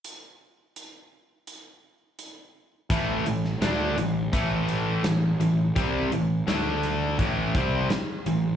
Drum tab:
HH |x---x---x---x---|x-x-x-x-x-x-x-x-|x-x-x-x-x-x-x-x-|
SD |----------------|---oo-------o---|----o-------o---|
BD |----------------|o-------o-------|o-------o-o-----|